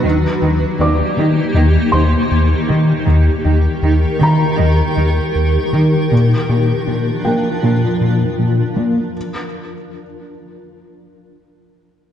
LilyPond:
<<
  \new Staff \with { instrumentName = "Felt piano" } { \time 4/4 \key ees \lydian \tempo 4 = 79 b''4 <d'' d'''>4. <c'' c'''>4.~ | <c'' c'''>4. bes''2~ bes''8~ | bes''8 r4 g''2~ g''8 | r1 | }
  \new Staff \with { instrumentName = "Ambient pad" } { \time 4/4 \key ees \lydian << { <ees ees' g'>1 | <ees ees' g'>1 | <f d' f'>1 | r1 | } \\ { bes1 | bes'1~ | bes'1 | r1 | } >> }
  \new Staff \with { instrumentName = "Cello section" } { \clef bass \time 4/4 \key ees \lydian ees8 ees8 ees8 ees8 ees8 ees8 r8 ees8 | ees8 ees8 ees8 ees8 ees8 ees8 r8 ees8 | bes,8 bes,8 bes,8 bes,8 bes,8 bes,8 r8 bes,8 | r1 | }
  \new Staff \with { instrumentName = "Analog synth bass" } { \clef bass \time 4/4 \key ees \lydian ees,8 ees,8 ees,8 ees8 ees,8 ees,8 ees,8 ees8 | ees,8 ees,8 ees,8 ees8 ees,8 ees,8 ees,8 ees8 | bes,8 bes,8 bes,8 bes8 bes,8 bes,8 bes,8 bes8 | r1 | }
>>